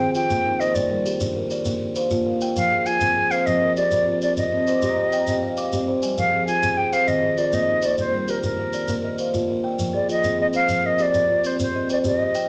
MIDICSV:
0, 0, Header, 1, 5, 480
1, 0, Start_track
1, 0, Tempo, 301205
1, 1202, Time_signature, 12, 3, 24, 8
1, 19898, End_track
2, 0, Start_track
2, 0, Title_t, "Flute"
2, 0, Program_c, 0, 73
2, 0, Note_on_c, 0, 79, 97
2, 215, Note_off_c, 0, 79, 0
2, 225, Note_on_c, 0, 79, 98
2, 955, Note_on_c, 0, 75, 88
2, 979, Note_off_c, 0, 79, 0
2, 1189, Note_on_c, 0, 74, 79
2, 1213, Note_off_c, 0, 75, 0
2, 1917, Note_off_c, 0, 74, 0
2, 4085, Note_on_c, 0, 77, 101
2, 4561, Note_on_c, 0, 80, 109
2, 4585, Note_off_c, 0, 77, 0
2, 5275, Note_on_c, 0, 77, 97
2, 5299, Note_off_c, 0, 80, 0
2, 5517, Note_on_c, 0, 75, 96
2, 5541, Note_off_c, 0, 77, 0
2, 5985, Note_off_c, 0, 75, 0
2, 5995, Note_on_c, 0, 74, 100
2, 6669, Note_off_c, 0, 74, 0
2, 6723, Note_on_c, 0, 74, 87
2, 6946, Note_off_c, 0, 74, 0
2, 6971, Note_on_c, 0, 75, 87
2, 9301, Note_off_c, 0, 75, 0
2, 9849, Note_on_c, 0, 77, 91
2, 10292, Note_off_c, 0, 77, 0
2, 10313, Note_on_c, 0, 80, 108
2, 10793, Note_on_c, 0, 79, 101
2, 10817, Note_off_c, 0, 80, 0
2, 11043, Note_on_c, 0, 77, 91
2, 11067, Note_off_c, 0, 79, 0
2, 11278, Note_on_c, 0, 75, 84
2, 11302, Note_off_c, 0, 77, 0
2, 11760, Note_on_c, 0, 74, 88
2, 11784, Note_off_c, 0, 75, 0
2, 12018, Note_on_c, 0, 75, 90
2, 12042, Note_off_c, 0, 74, 0
2, 12515, Note_on_c, 0, 74, 86
2, 12539, Note_off_c, 0, 75, 0
2, 12738, Note_off_c, 0, 74, 0
2, 12744, Note_on_c, 0, 72, 83
2, 13228, Note_on_c, 0, 70, 76
2, 13252, Note_off_c, 0, 72, 0
2, 13425, Note_off_c, 0, 70, 0
2, 13435, Note_on_c, 0, 70, 74
2, 14814, Note_off_c, 0, 70, 0
2, 15848, Note_on_c, 0, 74, 76
2, 16067, Note_off_c, 0, 74, 0
2, 16107, Note_on_c, 0, 75, 96
2, 16540, Note_off_c, 0, 75, 0
2, 16590, Note_on_c, 0, 75, 99
2, 16685, Note_off_c, 0, 75, 0
2, 16820, Note_on_c, 0, 77, 103
2, 17307, Note_on_c, 0, 75, 93
2, 17331, Note_off_c, 0, 77, 0
2, 17560, Note_on_c, 0, 74, 103
2, 17583, Note_off_c, 0, 75, 0
2, 18271, Note_on_c, 0, 72, 85
2, 18295, Note_off_c, 0, 74, 0
2, 18495, Note_off_c, 0, 72, 0
2, 18518, Note_on_c, 0, 72, 82
2, 18946, Note_off_c, 0, 72, 0
2, 18999, Note_on_c, 0, 74, 77
2, 19095, Note_off_c, 0, 74, 0
2, 19233, Note_on_c, 0, 75, 75
2, 19898, Note_off_c, 0, 75, 0
2, 19898, End_track
3, 0, Start_track
3, 0, Title_t, "Kalimba"
3, 0, Program_c, 1, 108
3, 0, Note_on_c, 1, 51, 81
3, 13, Note_on_c, 1, 68, 67
3, 245, Note_off_c, 1, 51, 0
3, 245, Note_on_c, 1, 65, 69
3, 490, Note_on_c, 1, 58, 84
3, 725, Note_on_c, 1, 63, 69
3, 728, Note_off_c, 1, 68, 0
3, 964, Note_off_c, 1, 65, 0
3, 965, Note_on_c, 1, 72, 70
3, 966, Note_off_c, 1, 58, 0
3, 1200, Note_on_c, 1, 55, 85
3, 1444, Note_off_c, 1, 63, 0
3, 1444, Note_off_c, 1, 72, 0
3, 1447, Note_on_c, 1, 70, 69
3, 1682, Note_off_c, 1, 55, 0
3, 1684, Note_on_c, 1, 67, 74
3, 1928, Note_on_c, 1, 62, 84
3, 2157, Note_off_c, 1, 70, 0
3, 2177, Note_on_c, 1, 70, 71
3, 2405, Note_off_c, 1, 67, 0
3, 2406, Note_off_c, 1, 62, 0
3, 2416, Note_on_c, 1, 74, 76
3, 2650, Note_on_c, 1, 58, 92
3, 2891, Note_off_c, 1, 70, 0
3, 2891, Note_off_c, 1, 74, 0
3, 3128, Note_off_c, 1, 58, 0
3, 3129, Note_on_c, 1, 72, 68
3, 3363, Note_on_c, 1, 65, 83
3, 3603, Note_on_c, 1, 70, 61
3, 3845, Note_off_c, 1, 65, 0
3, 3848, Note_off_c, 1, 72, 0
3, 3852, Note_on_c, 1, 79, 70
3, 4087, Note_on_c, 1, 53, 91
3, 4325, Note_off_c, 1, 70, 0
3, 4327, Note_on_c, 1, 68, 64
3, 4329, Note_off_c, 1, 79, 0
3, 4566, Note_off_c, 1, 53, 0
3, 4569, Note_on_c, 1, 65, 73
3, 4810, Note_on_c, 1, 60, 84
3, 5028, Note_off_c, 1, 68, 0
3, 5047, Note_on_c, 1, 68, 74
3, 5288, Note_off_c, 1, 60, 0
3, 5288, Note_off_c, 1, 65, 0
3, 5289, Note_on_c, 1, 72, 80
3, 5534, Note_on_c, 1, 53, 94
3, 5766, Note_off_c, 1, 68, 0
3, 5773, Note_on_c, 1, 70, 70
3, 6007, Note_off_c, 1, 72, 0
3, 6009, Note_off_c, 1, 53, 0
3, 6013, Note_on_c, 1, 67, 67
3, 6257, Note_on_c, 1, 60, 76
3, 6489, Note_off_c, 1, 70, 0
3, 6498, Note_on_c, 1, 65, 68
3, 6729, Note_off_c, 1, 67, 0
3, 6731, Note_off_c, 1, 60, 0
3, 6734, Note_on_c, 1, 74, 74
3, 6974, Note_on_c, 1, 60, 84
3, 7209, Note_off_c, 1, 74, 0
3, 7211, Note_off_c, 1, 65, 0
3, 7217, Note_on_c, 1, 75, 67
3, 7449, Note_off_c, 1, 60, 0
3, 7459, Note_on_c, 1, 72, 70
3, 7701, Note_on_c, 1, 67, 83
3, 7919, Note_off_c, 1, 75, 0
3, 7939, Note_on_c, 1, 75, 66
3, 8171, Note_off_c, 1, 72, 0
3, 8172, Note_off_c, 1, 67, 0
3, 8177, Note_on_c, 1, 79, 77
3, 8415, Note_on_c, 1, 60, 85
3, 8650, Note_off_c, 1, 75, 0
3, 8651, Note_on_c, 1, 77, 65
3, 8887, Note_on_c, 1, 86, 68
3, 8888, Note_off_c, 1, 60, 0
3, 8890, Note_off_c, 1, 79, 0
3, 9135, Note_on_c, 1, 67, 80
3, 9366, Note_off_c, 1, 77, 0
3, 9372, Note_on_c, 1, 72, 63
3, 9604, Note_off_c, 1, 86, 0
3, 9608, Note_off_c, 1, 67, 0
3, 9608, Note_on_c, 1, 80, 68
3, 9849, Note_on_c, 1, 53, 74
3, 10084, Note_off_c, 1, 80, 0
3, 10087, Note_off_c, 1, 72, 0
3, 10088, Note_on_c, 1, 68, 64
3, 10324, Note_on_c, 1, 65, 63
3, 10325, Note_off_c, 1, 53, 0
3, 10560, Note_on_c, 1, 60, 77
3, 10785, Note_off_c, 1, 68, 0
3, 10804, Note_on_c, 1, 68, 70
3, 11040, Note_off_c, 1, 60, 0
3, 11042, Note_off_c, 1, 65, 0
3, 11042, Note_on_c, 1, 72, 70
3, 11276, Note_on_c, 1, 51, 87
3, 11499, Note_off_c, 1, 68, 0
3, 11518, Note_on_c, 1, 68, 67
3, 11521, Note_off_c, 1, 72, 0
3, 11753, Note_on_c, 1, 65, 65
3, 11759, Note_off_c, 1, 51, 0
3, 11995, Note_on_c, 1, 58, 83
3, 12239, Note_off_c, 1, 68, 0
3, 12242, Note_on_c, 1, 63, 66
3, 12476, Note_off_c, 1, 65, 0
3, 12477, Note_on_c, 1, 72, 71
3, 12478, Note_off_c, 1, 58, 0
3, 12720, Note_on_c, 1, 55, 84
3, 12959, Note_off_c, 1, 72, 0
3, 12961, Note_off_c, 1, 63, 0
3, 12968, Note_on_c, 1, 70, 64
3, 13200, Note_off_c, 1, 55, 0
3, 13203, Note_on_c, 1, 67, 62
3, 13445, Note_on_c, 1, 62, 76
3, 13671, Note_off_c, 1, 70, 0
3, 13690, Note_on_c, 1, 70, 67
3, 13922, Note_off_c, 1, 67, 0
3, 13923, Note_off_c, 1, 62, 0
3, 13929, Note_on_c, 1, 74, 72
3, 14170, Note_on_c, 1, 58, 90
3, 14405, Note_off_c, 1, 70, 0
3, 14405, Note_off_c, 1, 74, 0
3, 14406, Note_on_c, 1, 75, 61
3, 14645, Note_off_c, 1, 58, 0
3, 14650, Note_on_c, 1, 72, 60
3, 14886, Note_on_c, 1, 65, 75
3, 15123, Note_off_c, 1, 75, 0
3, 15123, Note_on_c, 1, 70, 60
3, 15361, Note_on_c, 1, 79, 64
3, 15363, Note_off_c, 1, 65, 0
3, 15365, Note_off_c, 1, 72, 0
3, 15596, Note_on_c, 1, 53, 83
3, 15839, Note_on_c, 1, 68, 68
3, 15840, Note_off_c, 1, 79, 0
3, 15841, Note_off_c, 1, 70, 0
3, 16078, Note_off_c, 1, 53, 0
3, 16081, Note_on_c, 1, 65, 67
3, 16322, Note_on_c, 1, 60, 84
3, 16542, Note_off_c, 1, 68, 0
3, 16561, Note_on_c, 1, 68, 71
3, 16799, Note_on_c, 1, 72, 68
3, 16800, Note_off_c, 1, 65, 0
3, 16801, Note_off_c, 1, 60, 0
3, 17035, Note_on_c, 1, 53, 83
3, 17276, Note_on_c, 1, 70, 63
3, 17280, Note_off_c, 1, 68, 0
3, 17517, Note_off_c, 1, 53, 0
3, 17519, Note_off_c, 1, 72, 0
3, 17521, Note_on_c, 1, 67, 66
3, 17764, Note_on_c, 1, 60, 75
3, 17997, Note_off_c, 1, 70, 0
3, 18003, Note_on_c, 1, 65, 61
3, 18240, Note_off_c, 1, 67, 0
3, 18241, Note_off_c, 1, 60, 0
3, 18241, Note_on_c, 1, 74, 63
3, 18488, Note_on_c, 1, 60, 73
3, 18720, Note_off_c, 1, 74, 0
3, 18721, Note_off_c, 1, 65, 0
3, 18727, Note_on_c, 1, 75, 62
3, 18963, Note_off_c, 1, 60, 0
3, 18965, Note_on_c, 1, 72, 66
3, 19206, Note_on_c, 1, 67, 75
3, 19419, Note_off_c, 1, 75, 0
3, 19438, Note_on_c, 1, 75, 68
3, 19681, Note_off_c, 1, 72, 0
3, 19681, Note_on_c, 1, 79, 71
3, 19682, Note_off_c, 1, 67, 0
3, 19898, Note_off_c, 1, 75, 0
3, 19898, Note_off_c, 1, 79, 0
3, 19898, End_track
4, 0, Start_track
4, 0, Title_t, "Marimba"
4, 0, Program_c, 2, 12
4, 0, Note_on_c, 2, 68, 69
4, 236, Note_off_c, 2, 68, 0
4, 467, Note_on_c, 2, 51, 80
4, 702, Note_on_c, 2, 70, 75
4, 950, Note_on_c, 2, 58, 78
4, 955, Note_off_c, 2, 51, 0
4, 1427, Note_on_c, 2, 55, 93
4, 1427, Note_on_c, 2, 74, 74
4, 1433, Note_off_c, 2, 70, 0
4, 1437, Note_off_c, 2, 58, 0
4, 1895, Note_off_c, 2, 74, 0
4, 1914, Note_on_c, 2, 74, 75
4, 1916, Note_off_c, 2, 55, 0
4, 2168, Note_on_c, 2, 62, 81
4, 2403, Note_on_c, 2, 70, 69
4, 2619, Note_off_c, 2, 62, 0
4, 2638, Note_on_c, 2, 62, 79
4, 2640, Note_off_c, 2, 74, 0
4, 2882, Note_off_c, 2, 62, 0
4, 3124, Note_off_c, 2, 70, 0
4, 3124, Note_on_c, 2, 77, 69
4, 3365, Note_on_c, 2, 58, 78
4, 3589, Note_off_c, 2, 77, 0
4, 3608, Note_on_c, 2, 77, 73
4, 3845, Note_off_c, 2, 58, 0
4, 3846, Note_on_c, 2, 65, 87
4, 4319, Note_on_c, 2, 72, 78
4, 4321, Note_on_c, 2, 53, 88
4, 4326, Note_off_c, 2, 65, 0
4, 4327, Note_off_c, 2, 77, 0
4, 4782, Note_off_c, 2, 72, 0
4, 4801, Note_on_c, 2, 72, 72
4, 4803, Note_off_c, 2, 53, 0
4, 5055, Note_on_c, 2, 60, 84
4, 5294, Note_on_c, 2, 68, 69
4, 5506, Note_off_c, 2, 60, 0
4, 5523, Note_off_c, 2, 72, 0
4, 5525, Note_on_c, 2, 60, 81
4, 6005, Note_off_c, 2, 60, 0
4, 6005, Note_on_c, 2, 72, 70
4, 6009, Note_off_c, 2, 68, 0
4, 6244, Note_on_c, 2, 53, 80
4, 6466, Note_off_c, 2, 72, 0
4, 6485, Note_on_c, 2, 72, 70
4, 6724, Note_off_c, 2, 53, 0
4, 6726, Note_on_c, 2, 60, 74
4, 7192, Note_off_c, 2, 60, 0
4, 7205, Note_off_c, 2, 72, 0
4, 7211, Note_on_c, 2, 60, 89
4, 7333, Note_on_c, 2, 87, 69
4, 7443, Note_on_c, 2, 84, 72
4, 7552, Note_off_c, 2, 87, 0
4, 7567, Note_on_c, 2, 86, 70
4, 7666, Note_off_c, 2, 84, 0
4, 7684, Note_on_c, 2, 84, 75
4, 7687, Note_off_c, 2, 60, 0
4, 7788, Note_off_c, 2, 86, 0
4, 7804, Note_on_c, 2, 82, 72
4, 7906, Note_off_c, 2, 84, 0
4, 7922, Note_on_c, 2, 80, 72
4, 7923, Note_on_c, 2, 67, 85
4, 8026, Note_off_c, 2, 82, 0
4, 8047, Note_on_c, 2, 79, 75
4, 8146, Note_off_c, 2, 80, 0
4, 8169, Note_on_c, 2, 80, 72
4, 8268, Note_off_c, 2, 79, 0
4, 8282, Note_on_c, 2, 82, 75
4, 8385, Note_off_c, 2, 80, 0
4, 8387, Note_off_c, 2, 67, 0
4, 8404, Note_on_c, 2, 80, 75
4, 8406, Note_on_c, 2, 67, 85
4, 8505, Note_off_c, 2, 82, 0
4, 8530, Note_on_c, 2, 79, 70
4, 8626, Note_off_c, 2, 80, 0
4, 8650, Note_on_c, 2, 77, 69
4, 8740, Note_off_c, 2, 79, 0
4, 8759, Note_on_c, 2, 79, 69
4, 8864, Note_off_c, 2, 77, 0
4, 8883, Note_on_c, 2, 77, 73
4, 8884, Note_off_c, 2, 67, 0
4, 8984, Note_off_c, 2, 79, 0
4, 9008, Note_on_c, 2, 75, 70
4, 9106, Note_off_c, 2, 77, 0
4, 9127, Note_on_c, 2, 60, 80
4, 9128, Note_on_c, 2, 74, 65
4, 9229, Note_off_c, 2, 75, 0
4, 9249, Note_on_c, 2, 72, 75
4, 9343, Note_off_c, 2, 74, 0
4, 9362, Note_on_c, 2, 74, 73
4, 9469, Note_off_c, 2, 72, 0
4, 9483, Note_on_c, 2, 75, 70
4, 9581, Note_off_c, 2, 74, 0
4, 9600, Note_on_c, 2, 74, 67
4, 9603, Note_on_c, 2, 55, 78
4, 9604, Note_off_c, 2, 60, 0
4, 9706, Note_off_c, 2, 75, 0
4, 9725, Note_on_c, 2, 72, 71
4, 9824, Note_off_c, 2, 74, 0
4, 9838, Note_on_c, 2, 70, 69
4, 9946, Note_off_c, 2, 72, 0
4, 9952, Note_on_c, 2, 68, 63
4, 10053, Note_off_c, 2, 68, 0
4, 10062, Note_off_c, 2, 70, 0
4, 10072, Note_on_c, 2, 68, 68
4, 10073, Note_on_c, 2, 53, 86
4, 10082, Note_off_c, 2, 55, 0
4, 10526, Note_off_c, 2, 68, 0
4, 10545, Note_on_c, 2, 68, 65
4, 10557, Note_off_c, 2, 53, 0
4, 10778, Note_on_c, 2, 60, 80
4, 11251, Note_off_c, 2, 60, 0
4, 11271, Note_on_c, 2, 60, 82
4, 11273, Note_off_c, 2, 68, 0
4, 11516, Note_off_c, 2, 60, 0
4, 11749, Note_on_c, 2, 70, 65
4, 11997, Note_on_c, 2, 51, 80
4, 12233, Note_on_c, 2, 67, 62
4, 12469, Note_on_c, 2, 58, 76
4, 12475, Note_off_c, 2, 70, 0
4, 12479, Note_off_c, 2, 51, 0
4, 12954, Note_on_c, 2, 55, 86
4, 12955, Note_off_c, 2, 58, 0
4, 12955, Note_on_c, 2, 70, 73
4, 12957, Note_off_c, 2, 67, 0
4, 13204, Note_on_c, 2, 74, 64
4, 13422, Note_off_c, 2, 70, 0
4, 13437, Note_off_c, 2, 55, 0
4, 13441, Note_on_c, 2, 70, 63
4, 13680, Note_on_c, 2, 62, 80
4, 13922, Note_off_c, 2, 74, 0
4, 14138, Note_off_c, 2, 62, 0
4, 14157, Note_on_c, 2, 62, 83
4, 14161, Note_off_c, 2, 70, 0
4, 14399, Note_off_c, 2, 62, 0
4, 14639, Note_on_c, 2, 77, 65
4, 14879, Note_on_c, 2, 58, 73
4, 15113, Note_on_c, 2, 74, 73
4, 15356, Note_on_c, 2, 65, 72
4, 15360, Note_off_c, 2, 58, 0
4, 15360, Note_off_c, 2, 77, 0
4, 15830, Note_on_c, 2, 53, 89
4, 15833, Note_on_c, 2, 68, 67
4, 15836, Note_off_c, 2, 74, 0
4, 15838, Note_off_c, 2, 65, 0
4, 16065, Note_on_c, 2, 72, 68
4, 16294, Note_off_c, 2, 68, 0
4, 16313, Note_on_c, 2, 68, 70
4, 16315, Note_off_c, 2, 53, 0
4, 16543, Note_on_c, 2, 60, 77
4, 16792, Note_off_c, 2, 72, 0
4, 17006, Note_off_c, 2, 60, 0
4, 17025, Note_on_c, 2, 60, 74
4, 17036, Note_off_c, 2, 68, 0
4, 17509, Note_on_c, 2, 72, 67
4, 17512, Note_off_c, 2, 60, 0
4, 17746, Note_on_c, 2, 53, 71
4, 17980, Note_on_c, 2, 68, 63
4, 18225, Note_on_c, 2, 60, 69
4, 18232, Note_off_c, 2, 53, 0
4, 18233, Note_off_c, 2, 72, 0
4, 18686, Note_off_c, 2, 60, 0
4, 18705, Note_on_c, 2, 60, 91
4, 18708, Note_on_c, 2, 75, 72
4, 18709, Note_off_c, 2, 68, 0
4, 18960, Note_on_c, 2, 79, 66
4, 19177, Note_off_c, 2, 75, 0
4, 19191, Note_off_c, 2, 60, 0
4, 19434, Note_on_c, 2, 67, 76
4, 19679, Note_off_c, 2, 79, 0
4, 19898, Note_off_c, 2, 67, 0
4, 19898, End_track
5, 0, Start_track
5, 0, Title_t, "Shekere"
5, 233, Note_on_c, 9, 82, 64
5, 393, Note_off_c, 9, 82, 0
5, 479, Note_on_c, 9, 82, 79
5, 638, Note_off_c, 9, 82, 0
5, 966, Note_on_c, 9, 82, 61
5, 1126, Note_off_c, 9, 82, 0
5, 1195, Note_on_c, 9, 82, 80
5, 1354, Note_off_c, 9, 82, 0
5, 1688, Note_on_c, 9, 82, 68
5, 1847, Note_off_c, 9, 82, 0
5, 1918, Note_on_c, 9, 82, 88
5, 2078, Note_off_c, 9, 82, 0
5, 2395, Note_on_c, 9, 82, 59
5, 2554, Note_off_c, 9, 82, 0
5, 2630, Note_on_c, 9, 82, 78
5, 2789, Note_off_c, 9, 82, 0
5, 3117, Note_on_c, 9, 82, 61
5, 3276, Note_off_c, 9, 82, 0
5, 3352, Note_on_c, 9, 82, 77
5, 3511, Note_off_c, 9, 82, 0
5, 3841, Note_on_c, 9, 82, 66
5, 4000, Note_off_c, 9, 82, 0
5, 4081, Note_on_c, 9, 82, 77
5, 4241, Note_off_c, 9, 82, 0
5, 4560, Note_on_c, 9, 82, 63
5, 4719, Note_off_c, 9, 82, 0
5, 4791, Note_on_c, 9, 82, 79
5, 4950, Note_off_c, 9, 82, 0
5, 5276, Note_on_c, 9, 82, 59
5, 5435, Note_off_c, 9, 82, 0
5, 5525, Note_on_c, 9, 82, 76
5, 5684, Note_off_c, 9, 82, 0
5, 6002, Note_on_c, 9, 82, 58
5, 6161, Note_off_c, 9, 82, 0
5, 6233, Note_on_c, 9, 82, 73
5, 6393, Note_off_c, 9, 82, 0
5, 6719, Note_on_c, 9, 82, 58
5, 6878, Note_off_c, 9, 82, 0
5, 6960, Note_on_c, 9, 82, 81
5, 7119, Note_off_c, 9, 82, 0
5, 7442, Note_on_c, 9, 82, 61
5, 7601, Note_off_c, 9, 82, 0
5, 7678, Note_on_c, 9, 82, 82
5, 7838, Note_off_c, 9, 82, 0
5, 8163, Note_on_c, 9, 82, 55
5, 8322, Note_off_c, 9, 82, 0
5, 8397, Note_on_c, 9, 82, 77
5, 8556, Note_off_c, 9, 82, 0
5, 8876, Note_on_c, 9, 82, 63
5, 9036, Note_off_c, 9, 82, 0
5, 9121, Note_on_c, 9, 82, 76
5, 9280, Note_off_c, 9, 82, 0
5, 9601, Note_on_c, 9, 82, 63
5, 9760, Note_off_c, 9, 82, 0
5, 9840, Note_on_c, 9, 82, 79
5, 9999, Note_off_c, 9, 82, 0
5, 10323, Note_on_c, 9, 82, 61
5, 10482, Note_off_c, 9, 82, 0
5, 10562, Note_on_c, 9, 82, 78
5, 10722, Note_off_c, 9, 82, 0
5, 11041, Note_on_c, 9, 82, 57
5, 11200, Note_off_c, 9, 82, 0
5, 11277, Note_on_c, 9, 82, 77
5, 11436, Note_off_c, 9, 82, 0
5, 11754, Note_on_c, 9, 82, 54
5, 11913, Note_off_c, 9, 82, 0
5, 11990, Note_on_c, 9, 82, 71
5, 12149, Note_off_c, 9, 82, 0
5, 12463, Note_on_c, 9, 82, 58
5, 12622, Note_off_c, 9, 82, 0
5, 12712, Note_on_c, 9, 82, 71
5, 12871, Note_off_c, 9, 82, 0
5, 13194, Note_on_c, 9, 82, 54
5, 13354, Note_off_c, 9, 82, 0
5, 13435, Note_on_c, 9, 82, 74
5, 13595, Note_off_c, 9, 82, 0
5, 13911, Note_on_c, 9, 82, 55
5, 14070, Note_off_c, 9, 82, 0
5, 14147, Note_on_c, 9, 82, 67
5, 14307, Note_off_c, 9, 82, 0
5, 14634, Note_on_c, 9, 82, 55
5, 14793, Note_off_c, 9, 82, 0
5, 14881, Note_on_c, 9, 82, 69
5, 15040, Note_off_c, 9, 82, 0
5, 15600, Note_on_c, 9, 82, 72
5, 15759, Note_off_c, 9, 82, 0
5, 16083, Note_on_c, 9, 82, 61
5, 16242, Note_off_c, 9, 82, 0
5, 16314, Note_on_c, 9, 82, 77
5, 16473, Note_off_c, 9, 82, 0
5, 16785, Note_on_c, 9, 82, 59
5, 16944, Note_off_c, 9, 82, 0
5, 17026, Note_on_c, 9, 82, 78
5, 17186, Note_off_c, 9, 82, 0
5, 17504, Note_on_c, 9, 82, 58
5, 17663, Note_off_c, 9, 82, 0
5, 17749, Note_on_c, 9, 82, 74
5, 17908, Note_off_c, 9, 82, 0
5, 18231, Note_on_c, 9, 82, 57
5, 18391, Note_off_c, 9, 82, 0
5, 18476, Note_on_c, 9, 82, 84
5, 18636, Note_off_c, 9, 82, 0
5, 18956, Note_on_c, 9, 82, 59
5, 19115, Note_off_c, 9, 82, 0
5, 19189, Note_on_c, 9, 82, 87
5, 19349, Note_off_c, 9, 82, 0
5, 19676, Note_on_c, 9, 82, 61
5, 19835, Note_off_c, 9, 82, 0
5, 19898, End_track
0, 0, End_of_file